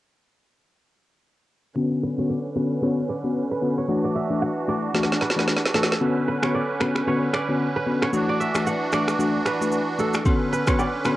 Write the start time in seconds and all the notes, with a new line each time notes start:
1.75 D3 B3 C#4 F#4 B4
2.03 B4
2.18 D3 B3 C#4 F#4 C#5
2.30 D5
2.55 D3 B3 C#4 F#4 B4
2.82 D3 B3 C#4 F#4 C#5
3.09 D5
3.24 D3 B3 C#4 F#4
3.51 B4
3.62 D3 B3 C#4 F#4
3.78 C#5
3.88 E3 A3 D4 F#4
4.04 D5
4.16 E5
4.30 E3 A3 D4 F#4
4.42 F#5
4.68 E3 A3 D4 F#4 D5
4.94 E3 A3 D4 F#4, snare
5.03 snare
5.12 snare
5.21 B4, snare
5.30 snare
5.36 E3 A3 D4 F#4, snare
5.48 snare
5.57 snare
5.65 snare
5.74 E3 A3 D4 F#4 A4, snare
5.83 snare
5.92 snare
6.00 D3 B3 C#4 F#4 B4
6.28 B4
6.42 D3 B3 C#4 F#4 C#5, finger snap, cross-stick
6.54 D5
6.80 D3 B3 C#4 F#4 B4, finger snap, cross-stick
6.95 finger snap, cross-stick
7.07 D3 B3 C#4 F#4 C#5
7.33 D5, finger snap, cross-stick
7.49 D3 B3 C#4 F#4
7.76 B4
7.86 D3 B3 C#4 F#4
8.02 C#5, finger snap, cross-stick
8.13 E3 A3 D4 F#4, shaker
8.29 D5
8.40 E5, shaker
8.55 E3 A3 D4 F#4, finger snap, cross-stick, shaker
8.67 F#5, shaker
8.92 E3 A3 D4 F#4 D5, finger snap, cross-stick, shaker
9.08 finger snap, cross-stick, shaker
9.19 E3 A3 D4 F#4, shaker
9.46 B4, finger snap, cross-stick, shaker
9.61 E3 A3 D4 F#4, shaker
9.72 shaker
9.98 E3 A3 D4 F#4 A4, shaker
10.13 finger snap, cross-stick, shaker
10.25 D3 B3 C#4 F#4 B4, kick, high agogo, shaker
10.53 B4, shaker
10.67 D3 B3 C#4 F#4 C#5, finger snap, kick, cross-stick, high agogo, shaker
10.79 D5, low woodblock, shaker
11.05 D3 B3 C#4 F#4 B4, finger snap, cross-stick, high agogo, shaker